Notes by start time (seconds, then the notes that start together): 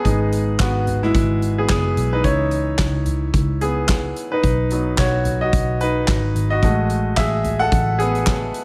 Already playing: G#4
0.04 G#1 G#3 B3 D#4, kick, closed hi-hat
0.32 closed hi-hat
0.59 G#1 B3 F#4, kick, snare, clap, closed hi-hat
0.87 closed hi-hat, floor tom
1.03 G#3 E4, snare
1.14 G#1, kick, closed hi-hat
1.42 closed hi-hat
1.58 B3 G#4
1.69 F#1 B3 G#4, kick, snare, clap, closed hi-hat
1.97 B1, closed hi-hat
2.13 D#4 B4
2.24 C#2 E3 C#4 D#4 E4 C#5, kick, closed hi-hat
2.51 closed hi-hat
2.79 C#2, kick, snare, clap, closed hi-hat
3.06 closed hi-hat, floor tom
3.34 C#2, kick, closed hi-hat
3.61 B3 G#4, closed hi-hat
3.89 kick, snare, clap, closed hi-hat
4.16 closed hi-hat
4.32 D#4 B4
4.43 B1, kick, closed hi-hat
4.70 F#3 B3 D#4, closed hi-hat
4.98 B1 F#4 C#5, kick, snare, clap, closed hi-hat
5.25 closed hi-hat, floor tom
5.41 F#4 D#5
5.53 B1, kick, closed hi-hat
5.81 D#4 B4, closed hi-hat
6.08 G#1, kick, snare, clap, closed hi-hat
6.35 G#1, closed hi-hat
6.50 F#4 D#5
6.63 A1 G#3 A3 F#4, kick, closed hi-hat
6.90 closed hi-hat
7.17 A1 G#4 E5, kick, snare, clap, closed hi-hat
7.44 closed hi-hat, floor tom
7.59 A4 F#5
7.72 A1, kick, closed hi-hat
7.99 B3 G#4, closed hi-hat
8.15 closed hi-hat
8.27 kick, snare, clap, closed hi-hat
8.54 closed hi-hat